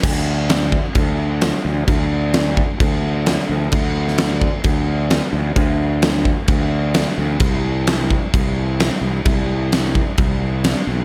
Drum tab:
CC |x---x---x---x---|x---x---x---x---|x---x---x---x---|x---x---x---x---|
SD |----o-------o---|----o-------o---|---oo-------o---|----o-------o---|
BD |o-----o-o-------|o-----o-o-------|o-----o-o-------|o-----o-o-------|

CC |x---x---x---x---|x---x---x---x---|
SD |----o-------o---|----o-------o---|
BD |o-----o-o-------|o-----o-o-------|